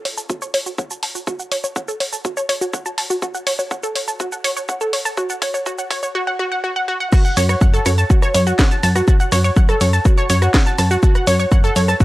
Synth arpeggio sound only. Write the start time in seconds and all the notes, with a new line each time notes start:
0.05 C#5
0.17 A5
0.30 F#4
0.42 C#5
0.54 C#5
0.66 F#4
0.78 F#5
0.91 A5
1.03 A5
1.15 F#4
1.27 F#4
1.39 F#5
1.52 C#5
1.64 C#5
1.76 F#5
1.88 A4
2.00 C#5
2.13 A5
2.25 F#4
2.37 C#5
2.49 C#5
2.61 F#4
2.73 F#5
2.86 A5
2.98 A5
3.10 F#4
3.22 F#4
3.35 F#5
3.47 C#5
3.59 C#5
3.71 F#5
3.83 A4
3.95 C#5
4.08 A5
4.20 F#4
4.32 F#5
4.44 C#5
4.57 C#5
4.69 F#5
4.81 A4
4.93 C#5
5.05 A5
5.17 F#4
5.30 F#5
5.42 C#5
5.54 C#5
5.66 F#4
5.79 F#5
5.91 C#5
6.03 C#5
6.15 F#4
6.27 F#5
6.39 F#4
6.52 F#5
6.64 F#4
6.76 F#5
6.88 F#4
7.00 F#5
7.13 F#4 F#5
7.25 F#5 F#6
7.37 C#5 C#6
7.49 C#5 C#6
7.61 F#5 F#6
7.74 A4 A5
7.86 C#5 C#6
7.98 A5 A6
8.10 F#4 F#5
8.22 C#5 C#6
8.35 C#5 C#6
8.47 F#4 F#5
8.59 F#5 F#6
8.71 A5 A6
8.83 A5 A6
8.96 F#4 F#5
9.08 F#4 F#5
9.20 F#5 F#6
9.32 C#5 C#6
9.44 C#5 C#6
9.56 F#5 F#6
9.69 A4 A5
9.81 C#5 C#6
9.93 A5 A6
10.05 F#4 F#5
10.18 C#5 C#6
10.30 C#5 C#6
10.42 F#4 F#5
10.54 F#5 F#6
10.66 A5 A6
10.78 A5 A6
10.91 F#4 F#5
11.03 F#4 F#5
11.15 F#5 F#6
11.27 C#5 C#6
11.40 C#5 C#6
11.52 F#5 F#6
11.64 A4 A5
11.76 C#5 C#6
11.88 A5 A6
12.00 F#4 F#5